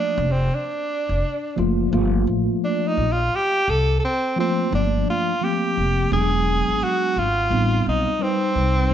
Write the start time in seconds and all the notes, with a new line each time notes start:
Already playing: F3 A3 A#3 D4
0.18 F1
0.32 C4
0.55 D4
1.09 F1
1.56 F#1 F3 A3 A#3 F4
1.91 G1 F3 A3 A#3 F4
2.27 A1
2.64 D4
2.88 D#4
2.97 A#1
3.12 F4
3.35 G4
3.68 C2 A4
4.00 A4
4.05 C4
4.36 F3 A3 A#3 C4 F4
4.70 G1 F3 A3 A#3 D4
4.75 D4
5.10 F4
5.41 F3 A3 A#3 C4 G4
5.77 F1
6.10 E1 F#3 G#3 B3 D4 G#4
6.69 G#1
6.83 F#4
7.16 G#1 F4
7.50 A1 G3 B3 C4 D#4
7.87 B1 D#4
8.19 G3 C4 D#4 B4
8.55 C2
8.90 D2 F#3 A3